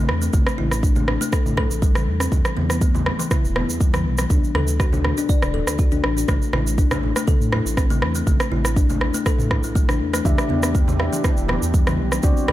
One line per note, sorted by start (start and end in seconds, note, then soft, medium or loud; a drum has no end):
0.00 0.10 A1 medium
0.09 0.30 E2 medium
0.09 cross-stick medium
0.22 0.32 A3 medium
0.22 shaker medium
0.33 0.45 A1 medium
0.33 0.41 A3 medium
0.33 kick loud
0.33 high conga loud
0.33 shaker medium
0.47 cross-stick medium
0.47 shaker soft
0.58 1.18 A1 medium
0.58 0.70 E4 medium
0.58 high conga loud
0.71 cross-stick medium
0.71 shaker medium
0.83 0.96 D4 medium
0.83 kick loud
0.83 shaker medium
0.96 1.07 A3 medium
0.96 high conga loud
0.96 low conga loud
0.96 shaker soft
1.08 cross-stick medium
1.08 low conga medium
1.21 1.27 A3 loud
1.21 shaker medium
1.32 1.44 A4 medium
1.32 kick loud
1.32 cross-stick medium
1.32 shaker medium
1.46 1.66 A2 medium
1.46 high conga loud
1.46 shaker soft
1.57 1.69 A4 medium
1.57 kick medium
1.57 cross-stick medium
1.57 low conga medium
1.71 2.09 A1 medium
1.71 shaker medium
1.82 1.94 G3 medium
1.82 kick loud
1.82 shaker medium
1.95 2.06 E3 medium
1.95 cross-stick medium
1.95 high conga loud
1.95 shaker soft
2.07 2.28 E2 medium
2.20 2.31 C4 medium
2.20 cross-stick medium
2.20 shaker medium
2.32 2.43 E2 loud
2.32 2.39 E3 medium
2.32 kick loud
2.32 high conga loud
2.32 shaker medium
2.45 cross-stick medium
2.45 shaker soft
2.56 3.16 E2 medium
2.56 2.68 B3 medium
2.56 high conga loud
2.70 cross-stick medium
2.70 shaker medium
2.81 2.94 A3 medium
2.81 kick loud
2.81 shaker medium
2.95 3.05 E3 medium
2.95 high conga loud
2.95 low conga loud
2.95 shaker soft
3.06 cross-stick medium
3.06 low conga medium
3.19 3.26 E3 loud
3.19 shaker medium
3.31 3.43 E4 medium
3.31 kick loud
3.31 cross-stick medium
3.31 high conga medium
3.31 shaker medium
3.44 3.65 E1 medium
3.44 shaker soft
3.55 3.68 B3 medium
3.55 cross-stick medium
3.55 low conga loud
3.69 4.07 E2 medium
3.69 shaker medium
3.81 3.92 G3 medium
3.81 kick loud
3.81 shaker medium
3.94 4.05 E3 loud
3.94 cross-stick medium
3.94 high conga medium
3.94 shaker soft
4.05 4.26 B1 medium
4.18 4.29 E3 medium
4.18 cross-stick medium
4.18 shaker medium
4.30 4.41 D2 loud
4.30 4.37 D4 medium
4.30 kick loud
4.30 high conga loud
4.30 shaker medium
4.44 shaker soft
4.55 5.14 D2 medium
4.55 4.67 A4 medium
4.55 cross-stick medium
4.55 high conga medium
4.67 shaker medium
4.80 4.92 F#4 medium
4.80 kick loud
4.80 cross-stick medium
4.80 shaker medium
4.92 5.03 D4 medium
4.92 high conga loud
4.92 low conga medium
4.92 shaker soft
5.04 cross-stick medium
5.04 low conga medium
5.17 5.24 D4 loud
5.17 shaker medium
5.29 5.41 D5 medium
5.29 kick loud
5.29 shaker medium
5.42 5.63 D1 medium
5.42 cross-stick medium
5.42 high conga medium
5.42 shaker soft
5.54 5.66 A4 medium
5.54 low conga medium
5.67 6.05 D2 medium
5.67 cross-stick medium
5.67 shaker medium
5.79 5.91 F#4 medium
5.79 kick loud
5.79 shaker medium
5.92 6.03 D4 loud
5.92 high conga medium
5.92 shaker soft
6.04 6.25 A1 medium
6.04 cross-stick medium
6.17 6.27 D4 medium
6.17 shaker medium
6.28 6.40 A1 loud
6.28 6.36 A3 medium
6.28 kick loud
6.28 cross-stick medium
6.28 high conga medium
6.28 shaker medium
6.42 shaker soft
6.53 7.13 A1 medium
6.53 6.65 E4 medium
6.53 cross-stick medium
6.53 high conga loud
6.67 shaker medium
6.78 6.91 D4 medium
6.78 kick loud
6.78 shaker medium
6.91 7.02 A3 medium
6.91 cross-stick medium
6.91 high conga medium
6.91 low conga loud
6.91 shaker soft
7.03 low conga medium
7.16 7.22 A3 loud
7.16 cross-stick medium
7.16 shaker medium
7.28 7.39 A4 medium
7.28 kick loud
7.28 high conga medium
7.28 shaker medium
7.41 7.61 A2 medium
7.41 shaker soft
7.52 7.64 E4 medium
7.52 cross-stick medium
7.52 low conga medium
7.66 8.03 A1 medium
7.66 shaker medium
7.77 7.89 C4 medium
7.77 kick loud
7.77 cross-stick medium
7.77 shaker medium
7.90 8.02 A3 loud
7.90 high conga medium
7.90 shaker soft
8.02 8.23 E2 medium
8.02 cross-stick medium
8.15 8.26 A3 medium
8.15 shaker medium
8.27 8.38 A1 medium
8.27 8.34 A3 medium
8.27 kick loud
8.27 high conga loud
8.27 shaker medium
8.40 cross-stick medium
8.40 shaker soft
8.52 9.11 A1 medium
8.52 8.64 E4 medium
8.52 high conga loud
8.65 cross-stick medium
8.65 shaker medium
8.76 8.89 D4 medium
8.76 kick loud
8.76 shaker medium
8.90 9.00 A3 medium
8.90 high conga medium
8.90 low conga loud
8.90 shaker soft
9.01 cross-stick medium
9.01 low conga medium
9.14 9.21 A3 loud
9.14 shaker medium
9.26 9.38 A4 medium
9.26 kick loud
9.26 cross-stick medium
9.26 shaker medium
9.38 9.60 A2 medium
9.38 high conga loud
9.38 shaker soft
9.51 9.63 E4 medium
9.51 kick medium
9.51 cross-stick medium
9.51 low conga loud
9.63 10.02 A1 medium
9.63 9.74 A3 medium
9.63 shaker medium
9.75 9.87 A3 medium
9.75 kick loud
9.75 shaker medium
9.89 9.95 D4 medium
9.89 cross-stick medium
9.89 high conga medium
9.89 shaker soft
10.00 10.21 E2 medium
10.13 10.25 A3 loud
10.13 cross-stick medium
10.13 shaker medium
10.25 10.36 E2 medium
10.25 10.32 E3 medium
10.25 12.22 E3 medium
10.25 12.22 D4 medium
10.25 10.97 D4 medium
10.25 12.22 G4 medium
10.25 10.97 G4 medium
10.25 10.97 E5 medium
10.25 kick loud
10.25 high conga loud
10.25 shaker medium
10.38 cross-stick medium
10.38 shaker soft
10.49 11.09 E2 medium
10.49 10.62 B3 medium
10.49 high conga loud
10.63 cross-stick medium
10.63 shaker medium
10.75 10.87 A3 medium
10.75 kick loud
10.75 shaker medium
10.88 10.98 E3 medium
10.88 high conga medium
10.88 low conga loud
10.88 shaker soft
10.99 12.21 D4 medium
10.99 12.21 G4 medium
10.99 12.21 E5 medium
10.99 cross-stick medium
10.99 low conga medium
11.13 11.19 E3 loud
11.13 shaker medium
11.24 11.36 E4 medium
11.24 kick loud
11.24 cross-stick medium
11.24 high conga loud
11.24 shaker medium
11.37 11.58 E1 medium
11.37 shaker soft
11.48 11.61 B3 medium
11.48 cross-stick medium
11.48 low conga loud
11.62 12.00 E2 medium
11.62 shaker medium
11.74 11.86 G3 medium
11.74 kick loud
11.74 shaker medium
11.87 11.98 E3 loud
11.87 cross-stick medium
11.87 high conga loud
11.87 shaker soft
11.99 12.20 B1 medium
12.12 12.22 E3 medium
12.12 cross-stick medium
12.12 shaker medium
12.23 12.35 D2 medium
12.23 12.52 D3 medium
12.23 12.52 C4 medium
12.23 12.31 D4 medium
12.23 12.52 F#4 medium
12.23 12.52 D5 medium
12.23 kick loud
12.23 high conga medium
12.23 shaker medium
12.37 shaker soft
12.48 12.52 D2 medium
12.48 12.52 A4 medium
12.48 cross-stick medium
12.48 high conga loud